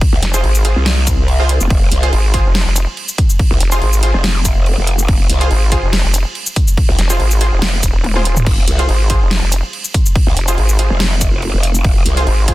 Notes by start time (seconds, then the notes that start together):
0.01 kick, crash
0.13 C2
0.23 F1, snare, closed hi-hat
0.34 F4 G#4 C5, closed hi-hat, shaker
0.44 G#1, crash
0.55 shaker
0.65 F4 G#4 C5, closed hi-hat
0.76 C2
0.86 snare, crash
1.07 kick, closed hi-hat, shaker
1.28 crash
1.40 F4 G#4 C5
1.49 closed hi-hat
1.61 F1, shaker
1.70 F1, kick, crash
1.92 C2, closed hi-hat
2.03 F4 G#4 C5, closed hi-hat
2.13 G#1, crash
2.34 F4 G#4 C5, kick, closed hi-hat
2.45 F1
2.55 snare, crash
2.66 F1
2.76 closed hi-hat, shaker
2.97 crash
3.09 shaker
3.18 kick, closed hi-hat
3.30 shaker
3.39 kick, crash
3.51 C2
3.60 F1, closed hi-hat
3.72 F4 G#4 C5, closed hi-hat, shaker
3.82 G#1, crash
3.93 shaker
4.03 F4 G#4 C5, closed hi-hat
4.14 F1
4.24 snare, crash
4.45 kick, closed hi-hat, shaker
4.66 crash
4.78 F1
4.87 closed hi-hat
4.99 shaker
5.08 F1, kick, crash
5.30 C2, closed hi-hat
5.41 F4 G#4 C5, closed hi-hat
5.51 G#1, crash
5.72 F4 G#4 C5, kick, closed hi-hat
5.83 F1
5.93 snare, crash
6.04 F1
6.14 closed hi-hat, shaker
6.35 crash
6.47 shaker
6.56 kick, closed hi-hat
6.68 shaker
6.77 kick, crash
6.89 C2
6.99 F1, snare, closed hi-hat
7.10 F4 G#4 C5, closed hi-hat, shaker
7.20 G#1, crash
7.31 shaker
7.41 F4 G#4 C5, closed hi-hat
7.52 F1
7.62 F1, snare, crash
7.83 D#1, kick, closed hi-hat, shaker
8.04 high tom, crash
8.16 F4 G#4 C5, high tom
8.25 closed hi-hat
8.37 mid tom, shaker
8.46 F1, kick, crash
8.68 C2, closed hi-hat
8.79 F4 G#4 C5, closed hi-hat
8.89 G#1, crash
9.10 F4 G#4 C5, kick, closed hi-hat
9.21 F1
9.31 snare, crash
9.42 F1
9.52 closed hi-hat, shaker
9.73 crash
9.85 shaker
9.94 kick, closed hi-hat
10.06 shaker
10.15 kick, crash
10.27 C2
10.37 F1, closed hi-hat
10.48 F4 G#4 C5, closed hi-hat, shaker
10.58 G#1, crash
10.69 shaker
10.79 F4 G#4 C5, closed hi-hat
10.90 F1
11.00 snare, crash
11.21 kick, closed hi-hat, shaker
11.42 crash
11.54 F1
11.63 closed hi-hat
11.75 shaker
11.84 F1, kick, crash
12.06 C2, closed hi-hat
12.17 F4 G#4 C5, closed hi-hat
12.27 G#1, crash
12.48 F4 G#4 C5, kick, closed hi-hat